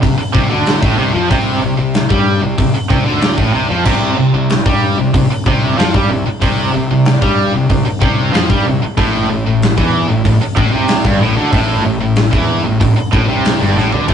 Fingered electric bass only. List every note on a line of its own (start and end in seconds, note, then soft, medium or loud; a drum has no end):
0.03 0.18 C2 medium
0.18 muted fingered electric bass stroke soft
0.35 0.49 C2 medium
0.50 0.80 D2 medium
0.83 0.97 A1 loud
0.97 1.12 C2 loud
1.13 1.29 F2 loud
1.31 1.60 C2 medium
1.62 1.77 C2 medium
1.78 2.08 C2 medium
2.11 2.40 G2 loud
2.42 2.57 C2 medium
2.59 2.73 C2 medium
2.74 muted fingered electric bass stroke soft
2.90 3.05 C2 medium
3.07 3.37 D2 medium
3.38 3.53 A1 loud
3.54 3.69 C2 loud
3.70 3.85 F2 loud
3.86 4.16 C2 medium
4.18 4.33 C2 medium
4.34 4.64 C2 medium
4.66 4.96 G2 medium
4.98 5.13 C2 medium
5.14 5.29 C2 medium
5.30 muted fingered electric bass stroke soft
5.46 5.76 C2 medium
5.78 5.93 F2 medium
5.94 6.09 G2 loud
6.10 6.25 C2 medium
6.28 muted fingered electric bass stroke soft
6.42 6.72 C2 medium
6.75 6.90 C2 medium
6.91 7.20 C2 medium
7.22 7.52 G2 medium
7.56 7.69 C2 medium
7.70 7.85 C2 medium
7.88 muted fingered electric bass stroke soft
8.02 8.32 C2 medium
8.35 8.49 F2 medium
8.50 8.65 G2 loud
8.68 8.82 C2 medium
8.84 muted fingered electric bass stroke soft
8.97 9.27 A1 medium
9.31 9.45 A1 medium
9.47 9.76 A1 medium
9.78 10.07 E2 loud
10.09 10.24 A1 medium
10.25 10.40 A1 medium
10.41 muted fingered electric bass stroke soft
10.57 10.72 A1 loud
10.73 11.03 C2 medium
11.05 11.20 G1 loud
11.20 11.36 A1 loud
11.37 11.52 D2 medium
11.53 11.83 A1 medium
11.85 12.00 A1 medium
12.01 12.31 A1 medium
12.33 12.63 E2 medium
12.65 12.80 A1 medium
12.81 12.96 A1 medium
12.97 muted fingered electric bass stroke soft
13.13 13.28 A1 medium
13.29 13.59 C2 medium
13.60 13.76 G1 loud
13.77 13.92 A1 loud
13.93 14.08 D2 medium
14.08 14.14 A1 medium